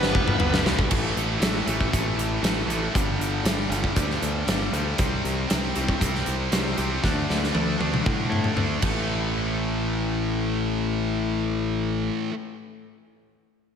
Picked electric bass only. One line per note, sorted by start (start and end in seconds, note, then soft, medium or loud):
0.00 0.13 G1 medium
0.15 0.38 F1 medium
0.39 0.63 G1 loud
0.66 0.89 B1 medium
0.92 1.11 A1 medium
1.17 1.37 A1 medium
1.40 1.61 A1 medium
1.67 1.87 A1 medium
1.94 2.13 A1 medium
2.17 2.38 A1 medium
2.43 2.63 A1 medium
2.66 2.87 A1 medium
2.95 3.15 G1 medium
3.19 3.40 G1 medium
3.43 3.64 G1 medium
3.70 3.91 G1 loud
3.96 4.17 D2 medium
4.22 4.42 D2 medium
4.47 4.68 G1 medium
4.72 4.93 D2 medium
4.98 5.19 C2 medium
5.24 5.45 C2 medium
5.52 5.71 C2 medium
5.76 5.96 C2 medium
6.02 6.22 C2 medium
6.27 6.47 C2 medium
6.52 6.72 C2 medium
6.78 6.98 C2 medium
7.04 7.24 D2 medium
7.30 7.50 D2 medium
7.55 7.75 D2 medium
7.79 8.00 D2 medium
8.06 8.26 A2 medium
8.29 8.50 A2 medium
8.56 8.77 D2 medium
8.82 12.09 A1 medium